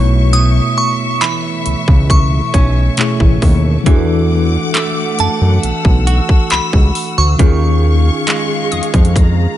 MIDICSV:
0, 0, Header, 1, 8, 480
1, 0, Start_track
1, 0, Tempo, 882353
1, 181, Time_signature, 4, 2, 24, 8
1, 5209, End_track
2, 0, Start_track
2, 0, Title_t, "Synth pluck"
2, 0, Program_c, 0, 84
2, 2581, Note_on_c, 0, 88, 74
2, 3432, Note_off_c, 0, 88, 0
2, 4741, Note_on_c, 0, 87, 55
2, 5209, Note_off_c, 0, 87, 0
2, 5209, End_track
3, 0, Start_track
3, 0, Title_t, "Synth bell"
3, 0, Program_c, 1, 98
3, 0, Note_on_c, 1, 85, 101
3, 160, Note_off_c, 1, 85, 0
3, 180, Note_on_c, 1, 87, 109
3, 422, Note_on_c, 1, 85, 101
3, 428, Note_off_c, 1, 87, 0
3, 645, Note_off_c, 1, 85, 0
3, 660, Note_on_c, 1, 83, 99
3, 1119, Note_off_c, 1, 83, 0
3, 1144, Note_on_c, 1, 85, 94
3, 1841, Note_off_c, 1, 85, 0
3, 2829, Note_on_c, 1, 81, 99
3, 3546, Note_on_c, 1, 83, 97
3, 3566, Note_off_c, 1, 81, 0
3, 3842, Note_off_c, 1, 83, 0
3, 3906, Note_on_c, 1, 85, 106
3, 5209, Note_off_c, 1, 85, 0
3, 5209, End_track
4, 0, Start_track
4, 0, Title_t, "String section"
4, 0, Program_c, 2, 48
4, 0, Note_on_c, 2, 57, 88
4, 0, Note_on_c, 2, 76, 78
4, 0, Note_on_c, 2, 85, 91
4, 2080, Note_off_c, 2, 76, 0
4, 2080, Note_off_c, 2, 85, 0
4, 2101, Note_on_c, 2, 86, 95
4, 2102, Note_on_c, 2, 78, 78
4, 3052, Note_off_c, 2, 86, 0
4, 3060, Note_on_c, 2, 88, 92
4, 4000, Note_off_c, 2, 57, 0
4, 4003, Note_off_c, 2, 78, 0
4, 4011, Note_off_c, 2, 88, 0
4, 4022, Note_on_c, 2, 68, 84
4, 4022, Note_on_c, 2, 77, 77
4, 4024, Note_on_c, 2, 85, 98
4, 4973, Note_off_c, 2, 85, 0
4, 4983, Note_on_c, 2, 82, 95
4, 5209, Note_off_c, 2, 68, 0
4, 5209, Note_off_c, 2, 77, 0
4, 5209, Note_off_c, 2, 82, 0
4, 5209, End_track
5, 0, Start_track
5, 0, Title_t, "Tine electric piano"
5, 0, Program_c, 3, 4
5, 0, Note_on_c, 3, 47, 65
5, 0, Note_on_c, 3, 57, 63
5, 0, Note_on_c, 3, 64, 61
5, 0, Note_on_c, 3, 73, 78
5, 45, Control_c, 3, 64, 127
5, 1593, Note_off_c, 3, 47, 0
5, 1599, Note_off_c, 3, 57, 0
5, 1605, Note_off_c, 3, 64, 0
5, 1611, Note_off_c, 3, 73, 0
5, 1615, Note_on_c, 3, 47, 54
5, 1620, Note_on_c, 3, 57, 51
5, 1627, Note_on_c, 3, 64, 47
5, 1633, Note_on_c, 3, 68, 57
5, 2087, Note_on_c, 3, 52, 85
5, 2098, Note_off_c, 3, 47, 0
5, 2099, Note_on_c, 3, 62, 78
5, 2101, Note_off_c, 3, 57, 0
5, 2104, Note_off_c, 3, 64, 0
5, 2107, Note_off_c, 3, 68, 0
5, 2109, Control_c, 3, 64, 0
5, 2111, Note_on_c, 3, 66, 77
5, 2124, Note_on_c, 3, 68, 75
5, 2148, Note_off_c, 3, 68, 0
5, 2159, Note_on_c, 3, 69, 93
5, 2189, Control_c, 3, 64, 127
5, 3992, Note_off_c, 3, 52, 0
5, 3999, Note_off_c, 3, 62, 0
5, 4005, Note_off_c, 3, 66, 0
5, 4006, Note_on_c, 3, 51, 72
5, 4018, Note_on_c, 3, 61, 64
5, 4027, Control_c, 3, 64, 0
5, 4029, Note_off_c, 3, 69, 0
5, 4029, Note_on_c, 3, 65, 65
5, 4042, Note_on_c, 3, 68, 78
5, 4128, Control_c, 3, 64, 127
5, 5209, Note_off_c, 3, 51, 0
5, 5209, Note_off_c, 3, 61, 0
5, 5209, Note_off_c, 3, 65, 0
5, 5209, Note_off_c, 3, 68, 0
5, 5209, End_track
6, 0, Start_track
6, 0, Title_t, "Clean electric guitar"
6, 0, Program_c, 4, 27
6, 0, Note_on_c, 4, 47, 81
6, 0, Note_on_c, 4, 54, 64
6, 0, Note_on_c, 4, 61, 65
6, 175, Note_off_c, 4, 47, 0
6, 181, Note_on_c, 4, 47, 81
6, 197, Note_off_c, 4, 61, 0
6, 646, Note_off_c, 4, 54, 0
6, 662, Note_on_c, 4, 52, 62
6, 1382, Note_on_c, 4, 61, 70
6, 2099, Note_off_c, 4, 52, 0
6, 2101, Note_off_c, 4, 47, 0
6, 2102, Note_on_c, 4, 52, 82
6, 2150, Note_off_c, 4, 61, 0
6, 2582, Note_on_c, 4, 57, 67
6, 3302, Note_on_c, 4, 66, 68
6, 4020, Note_off_c, 4, 52, 0
6, 4022, Note_on_c, 4, 51, 85
6, 4070, Note_off_c, 4, 57, 0
6, 4070, Note_off_c, 4, 66, 0
6, 4502, Note_on_c, 4, 56, 65
6, 5209, Note_off_c, 4, 51, 0
6, 5209, Note_off_c, 4, 56, 0
6, 5209, End_track
7, 0, Start_track
7, 0, Title_t, "Analog synth bass"
7, 0, Program_c, 5, 38
7, 0, Note_on_c, 5, 35, 96
7, 327, Note_off_c, 5, 35, 0
7, 904, Note_on_c, 5, 37, 49
7, 951, Note_off_c, 5, 37, 0
7, 1023, Note_on_c, 5, 37, 91
7, 1310, Note_off_c, 5, 37, 0
7, 1382, Note_on_c, 5, 35, 85
7, 1574, Note_off_c, 5, 35, 0
7, 1743, Note_on_c, 5, 33, 93
7, 1839, Note_off_c, 5, 33, 0
7, 1863, Note_on_c, 5, 39, 105
7, 2055, Note_off_c, 5, 39, 0
7, 2103, Note_on_c, 5, 40, 105
7, 2486, Note_off_c, 5, 40, 0
7, 2826, Note_on_c, 5, 42, 51
7, 2873, Note_off_c, 5, 42, 0
7, 2944, Note_on_c, 5, 42, 82
7, 3039, Note_off_c, 5, 42, 0
7, 3066, Note_on_c, 5, 35, 54
7, 3113, Note_off_c, 5, 35, 0
7, 3182, Note_on_c, 5, 35, 96
7, 3374, Note_off_c, 5, 35, 0
7, 3544, Note_on_c, 5, 37, 50
7, 3592, Note_off_c, 5, 37, 0
7, 3664, Note_on_c, 5, 37, 88
7, 3759, Note_off_c, 5, 37, 0
7, 3905, Note_on_c, 5, 38, 88
7, 3999, Note_off_c, 5, 38, 0
7, 4024, Note_on_c, 5, 39, 104
7, 4407, Note_off_c, 5, 39, 0
7, 4745, Note_on_c, 5, 41, 48
7, 4792, Note_off_c, 5, 41, 0
7, 4863, Note_on_c, 5, 41, 94
7, 5151, Note_off_c, 5, 41, 0
7, 5209, End_track
8, 0, Start_track
8, 0, Title_t, "Drums"
8, 181, Note_on_c, 9, 42, 76
8, 236, Note_off_c, 9, 42, 0
8, 661, Note_on_c, 9, 42, 69
8, 666, Note_on_c, 9, 39, 118
8, 715, Note_off_c, 9, 42, 0
8, 720, Note_off_c, 9, 39, 0
8, 901, Note_on_c, 9, 42, 61
8, 955, Note_off_c, 9, 42, 0
8, 1022, Note_on_c, 9, 36, 107
8, 1076, Note_off_c, 9, 36, 0
8, 1141, Note_on_c, 9, 36, 101
8, 1145, Note_on_c, 9, 42, 75
8, 1195, Note_off_c, 9, 36, 0
8, 1199, Note_off_c, 9, 42, 0
8, 1381, Note_on_c, 9, 36, 95
8, 1383, Note_on_c, 9, 42, 70
8, 1435, Note_off_c, 9, 36, 0
8, 1437, Note_off_c, 9, 42, 0
8, 1617, Note_on_c, 9, 42, 75
8, 1627, Note_on_c, 9, 39, 122
8, 1671, Note_off_c, 9, 42, 0
8, 1681, Note_off_c, 9, 39, 0
8, 1742, Note_on_c, 9, 36, 88
8, 1796, Note_off_c, 9, 36, 0
8, 1861, Note_on_c, 9, 36, 86
8, 1861, Note_on_c, 9, 46, 70
8, 1916, Note_off_c, 9, 36, 0
8, 1916, Note_off_c, 9, 46, 0
8, 2101, Note_on_c, 9, 36, 112
8, 2101, Note_on_c, 9, 42, 73
8, 2156, Note_off_c, 9, 36, 0
8, 2156, Note_off_c, 9, 42, 0
8, 2581, Note_on_c, 9, 42, 73
8, 2586, Note_on_c, 9, 39, 113
8, 2636, Note_off_c, 9, 42, 0
8, 2641, Note_off_c, 9, 39, 0
8, 2821, Note_on_c, 9, 42, 66
8, 2876, Note_off_c, 9, 42, 0
8, 3065, Note_on_c, 9, 42, 75
8, 3119, Note_off_c, 9, 42, 0
8, 3181, Note_on_c, 9, 36, 94
8, 3236, Note_off_c, 9, 36, 0
8, 3303, Note_on_c, 9, 42, 68
8, 3357, Note_off_c, 9, 42, 0
8, 3422, Note_on_c, 9, 36, 94
8, 3476, Note_off_c, 9, 36, 0
8, 3537, Note_on_c, 9, 42, 70
8, 3547, Note_on_c, 9, 39, 122
8, 3592, Note_off_c, 9, 42, 0
8, 3601, Note_off_c, 9, 39, 0
8, 3662, Note_on_c, 9, 36, 93
8, 3716, Note_off_c, 9, 36, 0
8, 3782, Note_on_c, 9, 46, 66
8, 3836, Note_off_c, 9, 46, 0
8, 4022, Note_on_c, 9, 36, 116
8, 4022, Note_on_c, 9, 42, 74
8, 4076, Note_off_c, 9, 36, 0
8, 4076, Note_off_c, 9, 42, 0
8, 4501, Note_on_c, 9, 42, 72
8, 4506, Note_on_c, 9, 39, 115
8, 4556, Note_off_c, 9, 42, 0
8, 4561, Note_off_c, 9, 39, 0
8, 4743, Note_on_c, 9, 42, 53
8, 4797, Note_off_c, 9, 42, 0
8, 4802, Note_on_c, 9, 42, 56
8, 4857, Note_off_c, 9, 42, 0
8, 4862, Note_on_c, 9, 36, 107
8, 4862, Note_on_c, 9, 42, 56
8, 4916, Note_off_c, 9, 36, 0
8, 4916, Note_off_c, 9, 42, 0
8, 4922, Note_on_c, 9, 42, 55
8, 4977, Note_off_c, 9, 42, 0
8, 4981, Note_on_c, 9, 36, 98
8, 4985, Note_on_c, 9, 42, 75
8, 5036, Note_off_c, 9, 36, 0
8, 5040, Note_off_c, 9, 42, 0
8, 5209, End_track
0, 0, End_of_file